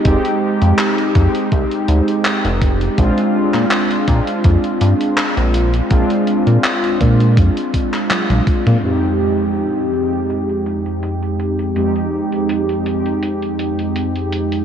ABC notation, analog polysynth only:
X:1
M:4/4
L:1/8
Q:"Swing 16ths" 1/4=82
K:Fdor
V:1 name="Analog polysynth"
[A,CEG]3 [A,CEG]4- [A,CEG] | [A,CDF]3 [A,CDF]4- [A,CDF] | [A,CDF]3 [A,CDF]4- [A,CDF] | [F,,A,CEG]3 [F,,A,CEG]4- [F,,A,CEG] |
[F,,A,CEG]3 [F,,A,CEG]4- [F,,A,CEG] |]